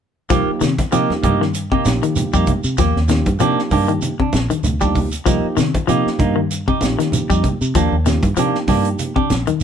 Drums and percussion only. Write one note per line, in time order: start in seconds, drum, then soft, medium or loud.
0.30 kick medium
0.30 closed hi-hat medium
0.30 shekere medium
0.61 snare medium
0.61 closed hi-hat soft
0.61 shekere medium
0.78 kick medium
0.78 snare soft
0.78 closed hi-hat soft
0.78 high conga medium
0.78 shekere soft
0.92 closed hi-hat medium
0.92 shekere medium
1.10 snare soft
1.10 high conga medium
1.23 kick medium
1.23 closed hi-hat medium
1.23 high conga medium
1.23 low conga medium
1.23 shekere soft
1.42 snare soft
1.54 closed hi-hat medium
1.54 shekere medium
1.72 kick medium
1.85 snare medium
1.85 closed hi-hat medium
1.85 high conga medium
1.85 shekere medium
2.03 closed hi-hat medium
2.03 shekere soft
2.16 closed hi-hat medium
2.16 high conga medium
2.16 low conga medium
2.16 shekere medium
2.33 kick medium
2.33 shekere medium
2.46 kick medium
2.46 closed hi-hat soft
2.46 low conga medium
2.46 shekere soft
2.64 shekere medium
2.78 kick medium
2.78 snare soft
2.78 closed hi-hat medium
2.78 shekere medium
2.97 snare soft
3.08 snare medium
3.08 closed hi-hat medium
3.08 shekere medium
3.26 kick medium
3.26 closed hi-hat soft
3.26 high conga medium
3.26 shekere soft
3.39 closed hi-hat medium
3.39 shekere medium
3.59 snare soft
3.71 kick medium
3.71 open hi-hat medium
3.71 high conga medium
3.71 low conga medium
3.71 shekere soft
3.89 closed hi-hat soft
4.02 closed hi-hat medium
4.02 low conga medium
4.02 shekere medium
4.20 kick medium
4.33 snare medium
4.33 closed hi-hat soft
4.33 high conga loud
4.33 shekere medium
4.50 closed hi-hat soft
4.50 high conga medium
4.50 shekere soft
4.64 closed hi-hat medium
4.64 high conga medium
4.64 low conga medium
4.64 shekere medium
4.81 kick medium
4.81 shekere medium
4.95 kick medium
4.95 open hi-hat medium
4.95 low conga medium
4.95 shekere soft
5.12 closed hi-hat soft
5.12 shekere medium
5.26 kick medium
5.26 closed hi-hat medium
5.26 shekere medium
5.57 snare medium
5.57 closed hi-hat soft
5.57 shekere medium
5.74 kick medium
5.74 closed hi-hat soft
5.74 high conga medium
5.74 shekere soft
5.88 closed hi-hat medium
5.88 shekere medium
6.07 snare soft
6.19 kick medium
6.19 closed hi-hat medium
6.19 high conga medium
6.19 low conga medium
6.19 shekere soft
6.51 closed hi-hat medium
6.51 shekere medium
6.68 kick medium
6.81 snare medium
6.81 closed hi-hat medium
6.81 high conga medium
6.81 shekere medium
7.00 snare soft
7.00 closed hi-hat medium
7.00 shekere soft
7.12 closed hi-hat medium
7.12 high conga medium
7.12 low conga medium
7.12 shekere medium
7.30 kick medium
7.30 shekere medium
7.43 kick medium
7.43 closed hi-hat medium
7.43 low conga medium
7.43 shekere soft
7.62 shekere medium
7.75 kick medium
7.75 closed hi-hat medium
7.75 shekere medium
8.06 snare medium
8.06 closed hi-hat soft
8.06 shekere medium
8.23 kick medium
8.23 closed hi-hat soft
8.23 high conga loud
8.23 shekere soft
8.37 closed hi-hat medium
8.37 shekere medium
8.55 snare soft
8.68 kick medium
8.68 snare soft
8.68 open hi-hat medium
8.68 high conga medium
8.68 low conga medium
8.68 shekere soft
8.85 closed hi-hat soft
8.99 closed hi-hat medium
8.99 low conga medium
8.99 shekere medium
9.16 kick medium
9.30 snare medium
9.30 closed hi-hat soft
9.30 high conga medium
9.30 shekere medium
9.47 closed hi-hat soft
9.47 high conga medium
9.47 shekere soft